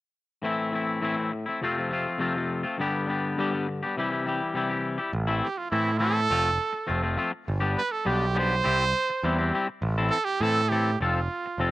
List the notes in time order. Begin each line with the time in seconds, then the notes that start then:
0.42 A2 E3 A3 C4 E4
0.72 E3 A3 C4 E4
1.02 A2 E3 A3 C4 E4
1.17 A3 C4 E4
1.33 muted clean electric guitar stroke
1.46 A3 C4 E4
1.62 F2 C3 F3 A3 C4 F4
1.76 F3 A3 C4 F4
1.90 F3 A3 C4 F4
2.18 F2 C3 F3 A3 C4 F4
2.34 F3 A3 C4 F4
2.63 F3 A3 C4 F4
2.78 G2 D3 G3 B3 D4 G4
3.07 G3 B3 D4 G4
3.37 G2 D3 G3 B3 D4 G4
3.51 G3 B3 D4 G4
3.68 muted clean electric guitar stroke
3.83 G3 B3 D4 G4
3.97 C3 E3 G3 E4 G4
4.10 G3 E4 G4
4.25 E3 G3 E4 G4
4.54 C3 E3 G3 E4 G4
4.70 G3 E4 G4
4.98 G3 E4 G4
5.13 A1
5.27 E3 A3 C4 E4
5.43 G4
5.58 F4
5.70 A2 E3 A3 C4 E4
5.98 E3 A3 C4 E4 A4
6.30 F1 F3 A3 C4 F4
6.73 muted clean electric guitar stroke
6.87 F1 F3 A3 C4 F4
7.03 F3 A3 C4 F4
7.17 F3 A3 C4 F4
7.48 G1
7.60 G3 B3 D4 G4
7.78 B4
7.91 A4
8.05 B1 G3 B3 D4 G4
8.35 G3 B3 D4 G4 C5
8.64 C2 G3 C4 E4 G4
9.10 muted clean electric guitar stroke
9.23 E2 G3 C4 E4 G4
9.38 G3 C4 E4 G4
9.53 G3 C4 E4 G4
9.69 muted clean electric guitar stroke
9.82 A1
9.98 E3 C4 E4 A4
10.10 A4
10.24 G4
10.40 A2 E3 C4 E4 A4
10.69 E3 C4 E4 G4 A4
11.01 F1 F3 C4 F4 A4
11.46 muted clean electric guitar stroke
11.58 F1 F3 C4 F4 A4